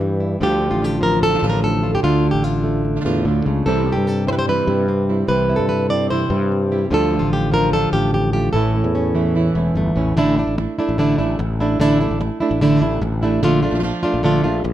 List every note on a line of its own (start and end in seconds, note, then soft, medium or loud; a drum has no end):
0.00 0.34 G2 loud
0.00 0.39 G2 medium
0.00 0.38 E3 medium
0.00 0.41 G3 medium
0.00 muted nylon-string guitar stroke medium
0.20 0.39 E4 soft
0.40 0.68 D2 loud
0.40 2.01 D3 medium
0.40 0.81 D3 medium
0.40 1.00 F3 medium
0.40 0.61 G3 medium
0.40 0.82 A3 medium
0.40 0.81 D4 medium
0.40 0.70 F4 medium
0.40 0.81 F4 medium
0.40 0.83 G4 loud
0.62 2.04 G3 medium
0.71 1.35 A1 medium
0.71 1.24 F4 medium
0.82 1.22 A3 soft
0.82 1.22 D4 soft
0.82 1.22 F4 soft
0.82 1.03 G4 loud
1.01 2.01 F3 medium
1.01 1.23 A#4 loud
1.23 1.49 A4 loud
1.23 muted nylon-string guitar stroke medium
1.30 1.33 D3 soft
1.30 1.33 A3 medium
1.30 1.34 D4 medium
1.30 1.34 F4 medium
1.34 1.37 D3 medium
1.34 1.38 A3 medium
1.34 1.38 D4 medium
1.34 1.38 F4 medium
1.38 2.01 A2 medium
1.38 1.42 D3 medium
1.38 1.42 A3 medium
1.38 1.43 D4 medium
1.38 1.43 F4 medium
1.42 1.97 A1 loud
1.42 1.62 D3 medium
1.42 1.62 A3 medium
1.42 1.63 D4 medium
1.42 1.63 F4 loud
1.50 1.63 A#4 loud
1.63 1.83 D3 soft
1.63 1.83 A3 medium
1.63 1.83 D4 medium
1.63 1.82 F4 medium
1.63 1.94 A4 loud
1.83 2.02 A3 soft
1.83 2.03 D4 soft
1.83 2.03 F4 soft
1.83 2.01 F4 soft
1.95 2.03 G4 medium
2.03 2.31 D2 loud
2.03 2.43 D3 medium
2.03 3.24 D3 medium
2.03 2.44 A3 medium
2.03 2.44 D4 medium
2.03 2.31 F4 loud
2.03 2.43 F4 medium
2.24 3.64 D4 medium
2.31 2.97 A1 medium
2.31 2.44 G4 medium
2.44 2.84 A3 soft
2.44 2.84 D4 soft
2.44 3.26 F4 medium
2.44 2.84 F4 medium
2.64 3.64 A3 medium
2.85 muted nylon-string guitar stroke medium
2.96 2.99 D3 soft
2.96 3.00 A3 medium
2.96 3.00 D4 medium
2.96 3.00 F4 medium
3.00 3.04 D3 medium
3.00 3.04 A3 medium
3.00 3.05 D4 medium
3.00 3.05 F4 medium
3.05 3.24 E2 medium
3.05 3.45 A2 medium
3.05 3.25 D3 medium
3.05 3.25 A3 medium
3.05 3.25 D4 medium
3.05 3.25 F4 medium
3.25 3.44 D2 medium
3.25 3.46 D3 medium
3.25 3.46 D3 soft
3.25 3.46 A3 soft
3.25 3.46 D4 medium
3.25 3.46 F4 medium
3.46 3.64 C#2 medium
3.46 3.66 C#3 medium
3.46 3.67 A3 soft
3.46 3.66 D4 soft
3.46 3.66 F4 soft
3.66 3.94 C2 loud
3.66 4.65 C3 medium
3.66 3.86 C3 medium
3.66 3.87 E3 medium
3.66 4.27 G3 soft
3.66 3.87 G3 medium
3.66 3.87 C4 medium
3.66 3.92 E4 medium
3.66 3.86 E4 medium
3.66 4.06 A4 medium
3.87 4.07 G3 soft
3.87 4.87 C4 medium
3.87 4.07 C4 soft
3.87 4.07 E4 soft
3.92 4.60 G2 medium
3.92 4.47 G4 medium
4.07 4.28 A4 medium
4.07 muted nylon-string guitar stroke medium
4.27 5.26 G3 medium
4.27 4.47 G3 soft
4.27 4.47 C4 soft
4.27 4.47 E4 medium
4.27 4.32 C5 loud
4.33 4.38 B4 medium
4.39 4.48 C5 loud
4.47 4.67 C3 medium
4.47 4.67 E3 medium
4.47 4.67 G3 medium
4.47 4.68 C4 medium
4.47 4.67 E4 medium
4.47 5.16 B4 loud
4.67 5.22 G2 loud
4.67 5.26 C3 medium
4.67 4.88 G3 soft
4.67 4.88 C4 soft
4.67 4.88 E4 medium
4.88 5.27 C4 medium
4.88 muted nylon-string guitar stroke medium
5.09 5.28 G3 soft
5.09 5.29 C4 soft
5.09 5.29 E4 medium
5.27 5.56 C2 loud
5.27 6.88 C3 medium
5.27 5.48 C3 medium
5.27 5.49 E3 medium
5.27 5.49 G3 medium
5.27 5.49 C4 medium
5.27 5.48 E4 medium
5.27 5.68 B4 medium
5.49 5.69 G3 soft
5.49 5.69 C4 soft
5.49 6.89 E4 medium
5.49 5.69 E4 soft
5.56 6.23 G2 medium
5.56 6.10 A4 medium
5.69 5.90 B4 medium
5.69 muted nylon-string guitar stroke medium
5.89 6.10 G3 soft
5.89 6.89 C4 medium
5.89 6.10 C4 medium
5.89 6.09 E4 medium
5.89 6.10 D5 loud
6.10 6.30 C3 medium
6.10 6.30 E3 medium
6.10 6.30 G3 medium
6.10 6.31 C4 medium
6.10 6.30 E4 medium
6.10 6.78 C5 loud
6.30 6.85 G2 loud
6.30 6.89 G3 medium
6.30 6.51 G3 soft
6.30 6.51 C4 soft
6.30 6.51 E4 medium
6.51 muted nylon-string guitar stroke medium
6.72 6.92 G3 soft
6.72 6.92 C4 soft
6.72 6.91 E4 soft
6.72 6.90 G4 medium
6.90 7.18 D2 loud
6.90 8.51 D3 medium
6.90 7.11 D3 medium
6.90 7.50 F3 medium
6.90 7.10 G3 medium
6.90 7.12 A3 medium
6.90 7.12 D4 medium
6.90 7.18 F4 medium
6.90 7.12 F4 medium
6.90 7.33 A4 loud
7.11 8.54 G3 medium
7.11 7.32 A3 soft
7.11 7.32 D4 soft
7.11 7.32 F4 soft
7.19 7.85 A1 medium
7.19 7.73 F4 medium
7.33 7.53 G4 loud
7.33 muted nylon-string guitar stroke medium
7.51 8.51 F3 medium
7.51 7.73 A3 soft
7.51 7.73 D4 soft
7.51 7.73 F4 medium
7.51 7.73 A#4 loud
7.73 7.93 D3 medium
7.73 7.93 A3 medium
7.73 7.93 D4 medium
7.73 7.93 F4 medium
7.73 7.93 A4 loud
7.92 8.48 A1 loud
7.92 8.51 A2 medium
7.92 8.13 A3 soft
7.92 8.13 D4 soft
7.92 8.13 F4 medium
7.92 8.13 G4 loud
8.14 8.32 G4 loud
8.14 muted nylon-string guitar stroke medium
8.33 8.54 A3 soft
8.33 8.54 D4 soft
8.33 8.53 F4 soft
8.33 8.52 G4 loud
8.53 8.81 A1 loud
8.53 9.56 A2 medium
8.53 8.74 E3 medium
8.53 8.74 A3 medium
8.53 8.75 C#4 medium
8.53 8.73 E4 medium
8.53 10.16 A4 loud
8.75 8.94 A3 soft
8.75 8.94 C#4 soft
8.75 8.94 E4 soft
8.84 9.48 E2 medium
8.95 9.96 C#4 medium
8.95 muted nylon-string guitar stroke medium
9.15 10.14 E3 medium
9.15 9.35 A3 soft
9.15 9.35 C#4 soft
9.15 9.35 E4 medium
9.35 9.55 E3 medium
9.35 9.55 A3 medium
9.35 9.55 C#4 medium
9.35 9.54 E4 medium
9.55 9.74 E1 medium
9.55 10.17 E2 medium
9.55 9.75 A3 soft
9.55 9.76 C#4 soft
9.55 9.75 E4 medium
9.75 9.94 G1 medium
9.75 10.15 A3 medium
9.75 muted nylon-string guitar stroke medium
9.96 10.14 A1 medium
9.96 10.17 A3 soft
9.96 10.15 C#4 medium
9.96 10.17 C#4 soft
9.96 10.17 E4 medium
10.16 10.44 A1 medium
10.16 10.37 D3 medium
10.16 10.57 D3 medium
10.16 10.37 A3 medium
10.16 10.57 A3 medium
10.16 10.37 D4 medium
10.16 10.58 D4 medium
10.16 10.36 E4 medium
10.16 10.57 E4 medium
10.38 10.57 A3 soft
10.38 10.57 D4 medium
10.38 10.57 E4 medium
10.47 10.66 A1 medium
10.58 10.78 A3 soft
10.58 10.78 D4 soft
10.58 10.78 E4 medium
10.58 muted nylon-string guitar stroke medium
10.79 10.98 A3 medium
10.79 10.99 A3 soft
10.79 10.98 D4 medium
10.79 10.99 D4 soft
10.79 10.98 E4 medium
10.89 11.16 A1 medium
10.98 11.18 D3 medium
10.98 11.18 A3 medium
10.98 11.18 D4 medium
10.98 11.17 E4 medium
10.98 muted nylon-string guitar stroke medium
11.18 11.37 A1 medium
11.18 11.59 D3 medium
11.18 11.38 A3 soft
11.18 11.59 A3 medium
11.18 11.38 D4 medium
11.18 11.60 D4 medium
11.18 11.38 E4 medium
11.18 11.60 E4 medium
11.39 11.75 A1 loud
11.39 muted nylon-string guitar stroke medium
11.60 11.79 A3 medium
11.60 11.80 A3 soft
11.60 11.80 D4 medium
11.60 11.80 D4 soft
11.60 11.79 E4 medium
11.60 11.80 E4 medium
11.80 12.07 A1 loud
11.80 11.99 D3 medium
11.80 12.20 D3 medium
11.80 11.99 A3 medium
11.80 12.20 A3 medium
11.80 12.00 D4 medium
11.80 12.20 D4 medium
11.80 11.99 E4 loud
11.80 12.19 E4 medium
12.00 12.19 A3 soft
12.00 12.20 D4 medium
12.00 12.20 E4 medium
12.11 12.29 A1 medium
12.21 12.41 A3 soft
12.21 12.40 D4 soft
12.21 12.40 E4 medium
12.21 muted nylon-string guitar stroke medium
12.40 12.61 A3 medium
12.40 12.61 A3 soft
12.40 12.61 D4 medium
12.40 12.60 E4 medium
12.51 12.78 A1 loud
12.61 12.81 D3 loud
12.61 12.81 A3 loud
12.61 12.81 D4 medium
12.61 12.80 E4 loud
12.61 muted nylon-string guitar stroke medium
12.81 13.00 A1 loud
12.81 13.21 D3 medium
12.81 13.21 A3 medium
12.81 13.01 A3 medium
12.81 13.21 D4 medium
12.81 13.01 D4 medium
12.81 13.01 E4 medium
12.81 13.21 E4 medium
13.01 13.38 A1 loud
13.01 muted nylon-string guitar stroke medium
13.22 13.42 A3 soft
13.22 13.42 A3 medium
13.22 13.42 D4 soft
13.22 13.42 D4 medium
13.22 13.41 E4 soft
13.22 13.42 E4 medium
13.43 13.70 A#1 loud
13.43 13.62 D3 medium
13.43 13.62 A3 loud
13.43 13.62 D4 medium
13.43 13.61 F4 loud
13.43 muted nylon-string guitar stroke medium
13.63 13.82 A3 soft
13.63 13.82 D4 medium
13.63 13.82 F4 medium
13.70 13.91 A#1 medium
13.70 13.73 F3 medium
13.70 13.74 A3 medium
13.70 13.74 D4 medium
13.70 13.74 F4 medium
13.75 13.78 F3 medium
13.75 13.78 A3 medium
13.75 13.79 D4 medium
13.75 13.79 F4 medium
13.79 13.83 F3 medium
13.79 13.83 A3 medium
13.79 13.83 D4 medium
13.79 13.83 F4 medium
13.83 14.23 F3 medium
13.83 14.23 A3 medium
13.83 14.23 D4 medium
13.83 14.24 F4 medium
13.83 muted nylon-string guitar stroke medium
14.03 14.23 A3 medium
14.03 14.23 D4 medium
14.03 14.23 F4 medium
14.14 14.41 A#1 medium
14.23 14.43 D3 medium
14.23 14.43 F3 medium
14.23 14.43 A3 medium
14.23 14.44 D4 medium
14.23 14.43 F4 medium
14.44 14.62 A#1 loud
14.44 14.64 A3 medium
14.44 14.63 A3 medium
14.44 14.64 D4 medium
14.44 14.63 F4 medium
14.44 14.64 F4 medium
14.64 14.73 A#1 loud
14.64 muted nylon-string guitar stroke medium